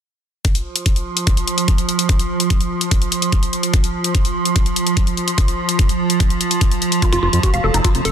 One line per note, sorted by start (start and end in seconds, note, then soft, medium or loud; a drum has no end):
0.45 8.12 F3 medium
0.45 kick loud
0.45 closed hi-hat medium
0.55 closed hi-hat medium
0.76 closed hi-hat medium
0.86 kick loud
0.86 closed hi-hat medium
0.96 closed hi-hat soft
1.17 closed hi-hat soft
1.27 kick loud
1.27 closed hi-hat medium
1.37 closed hi-hat medium
1.48 closed hi-hat medium
1.58 closed hi-hat soft
1.68 kick loud
1.68 closed hi-hat medium
1.78 closed hi-hat medium
1.89 closed hi-hat soft
1.99 closed hi-hat medium
2.09 kick loud
2.09 closed hi-hat medium
2.19 closed hi-hat medium
2.40 closed hi-hat medium
2.50 kick loud
2.50 closed hi-hat medium
2.61 closed hi-hat soft
2.81 closed hi-hat soft
2.91 kick loud
2.91 closed hi-hat medium
3.02 closed hi-hat medium
3.12 closed hi-hat medium
3.22 closed hi-hat medium
3.32 kick loud
3.32 closed hi-hat medium
3.43 closed hi-hat soft
3.53 closed hi-hat soft
3.63 closed hi-hat medium
3.74 kick loud
3.74 closed hi-hat medium
3.84 closed hi-hat soft
4.04 closed hi-hat medium
4.15 kick loud
4.15 closed hi-hat medium
4.25 closed hi-hat soft
4.45 closed hi-hat soft
4.56 kick loud
4.56 closed hi-hat medium
4.66 closed hi-hat medium
4.76 closed hi-hat medium
4.87 closed hi-hat soft
4.97 kick loud
4.97 closed hi-hat medium
5.07 closed hi-hat soft
5.17 closed hi-hat soft
5.28 closed hi-hat medium
5.38 kick loud
5.38 closed hi-hat medium
5.48 closed hi-hat soft
5.69 closed hi-hat medium
5.79 kick loud
5.79 closed hi-hat medium
5.89 closed hi-hat soft
6.10 closed hi-hat soft
6.20 kick loud
6.20 closed hi-hat medium
6.30 closed hi-hat soft
6.41 closed hi-hat medium
6.51 closed hi-hat soft
6.61 kick loud
6.61 closed hi-hat medium
6.71 closed hi-hat soft
6.82 closed hi-hat soft
6.92 closed hi-hat medium
7.02 7.07 F4 medium
7.02 kick loud
7.02 closed hi-hat medium
7.13 7.19 F1 medium
7.13 7.17 F4 loud
7.13 closed hi-hat soft
7.23 7.29 F1 medium
7.23 7.27 F4 loud
7.33 7.39 F2 medium
7.33 closed hi-hat medium
7.43 7.50 F#4 medium
7.43 kick loud
7.43 closed hi-hat medium
7.54 7.60 F1 medium
7.54 7.58 F5 medium
7.54 closed hi-hat soft
7.64 7.70 F1 loud
7.64 7.67 A4 medium
7.74 7.81 F1 medium
7.74 7.79 D#4 medium
7.74 closed hi-hat soft
7.84 7.87 F4 medium
7.84 kick loud
7.84 closed hi-hat medium
7.95 8.01 F1 medium
7.95 closed hi-hat soft
8.05 8.11 F1 loud
8.05 8.10 A4 loud
8.05 closed hi-hat medium